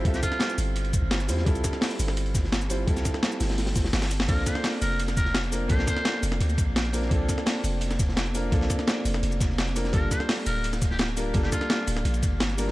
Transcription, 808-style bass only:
\new Staff \with { instrumentName = "808-style bass" } { \clef bass \time 4/4 \key bes \lydian \tempo 4 = 170 c,8 r4 g,,4~ g,,16 g,,8. e,8 | c,8 r4 g,,2~ g,,8 | c,8 r4 g,,4. g,,4 | bes,,8 r4 f,,2~ f,,8 |
bes,,8 r4 f,,8 d,8 bes,,4. | bes,,8 r4 f,,2~ f,,8 | bes,,8 r4 f,,8 f,,2 | g,,8 r4 d,,2~ d,,8 |
g,,8 r4 d,,8 bes,,8 g,,4. | }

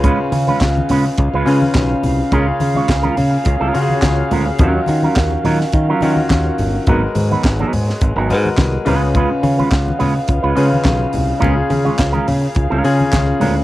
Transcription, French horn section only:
\new Staff \with { instrumentName = "French horn section" } { \time 4/4 \key cis \mixolydian \tempo 4 = 105 << { <gis b eis''>1 | <ais gis'>1 | <fis cis'>1 | <b gis'>2.~ <b gis'>8 <gis b eis''>8~ |
<gis b eis''>1 | <ais gis'>1 | } \\ { cis1 | cis1 | dis1 | gis2.~ gis8 cis8~ |
cis1~ | cis1 | } >> }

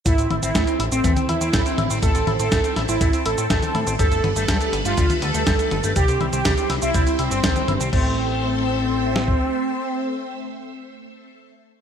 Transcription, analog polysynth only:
\new Staff \with { instrumentName = "Analog polysynth" } { \time 4/4 \key a \minor \tempo 4 = 122 e'8 r16 e'8. r16 c'8 r16 e'4~ e'16 r16 | a'8 r16 a'8. r16 e'8 r16 a'4~ a'16 r16 | a'8 r16 a'8. r16 f'8 r16 a'4~ a'16 r16 | g'8 r16 g'8. r16 e'8 r16 c'4~ c'16 r16 |
c'1~ | c'1 | }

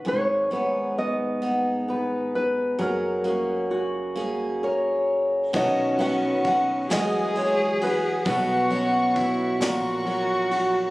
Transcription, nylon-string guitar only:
\new Staff \with { instrumentName = "Nylon-string guitar" } { \time 6/8 \key b \major \tempo 4. = 44 cis''8 cis''8 dis''4. b'8 | ais'2 r4 | dis''8 fis''8 fis''8 dis''8 cis''8 b'8 | b'4 r2 | }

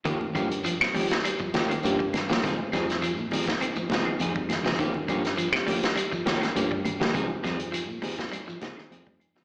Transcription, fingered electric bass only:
\new Staff \with { instrumentName = "Fingered electric bass" } { \clef bass \time 4/4 \key ees \mixolydian \tempo 4 = 102 ees,16 r16 g,8. c16 g,8 r8 ees,16 r16 g,8. ees,16 | des,16 r16 f,8. bes,16 f,8 r8 des,16 r16 f,8. des,16 | ees,16 r16 g,8. c16 g,8 r8 ees,16 r16 g,8. ees,16 | des,16 r16 f,8. bes,16 f,8 r8 des,16 r16 f,8. des,16 | }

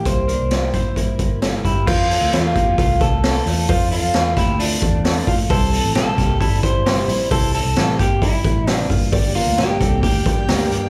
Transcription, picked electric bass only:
\new Staff \with { instrumentName = "Picked electric bass" } { \clef bass \time 4/4 \key f \major \tempo 4 = 132 c,8. c,8. bes,,4 g,,4 g,,8 | f,8. d,16 e,8 f,8 c,8 c,4 e,8 | f,8. f,16 e,8 d,4 e,4 bes,,8 | c,8. a,,16 bes,,8 c,8 g,,8 g,,4 bes,,8 |
c,8. c,16 a,,8 g,,4 a,,4 g,,8~ | g,,8. d,16 bes,,8 c,8 d,8 bes,,8 d,8 g,8 | }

